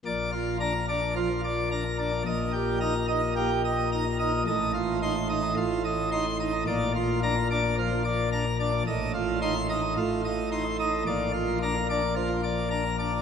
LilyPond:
<<
  \new Staff \with { instrumentName = "Pipe organ" } { \time 4/4 \key bes \major \tempo 4 = 109 << { d''8 f'8 bes''8 d''8 f'8 d''8 bes''8 d''8 | ees''8 g'8 bes''8 ees''8 g'8 ees''8 bes''8 ees''8 | ees''8 f'8 c'''8 ees''8 f'8 ees''8 c'''8 ees''8 | d''8 f'8 bes''8 d''8 f'8 d''8 bes''8 d''8 |
ees''8 f'8 c'''8 ees''8 f'8 ees''8 c'''8 ees''8 | d''8 f'8 bes''8 d''8 f'8 d''8 bes''8 d''8 | } \\ { bes,4 d'16 r16 d'16 r16 f16 r8. d'16 r16 d'16 r16 | bes,4 ees'16 r16 ees'16 r16 bes16 r8. ees'16 r16 ees'16 r16 | a,4 ees'16 r16 ees'16 r16 a,4 ees'16 r16 ees'16 r16 | bes,4 d'16 r16 d'16 r16 f16 r8. d'16 r16 d'16 r16 |
a,4 ees'16 r16 ees'16 r16 a,4 ees'16 r16 ees'16 r16 | bes,4 d'16 r16 d'16 r16 f16 r8. d'16 r16 d'16 r16 | } >> }
  \new Staff \with { instrumentName = "Pipe organ" } { \clef bass \time 4/4 \key bes \major bes,,1 | bes,,1 | a,,2 a,,2 | bes,,1 |
a,,2 a,,2 | bes,,1 | }
>>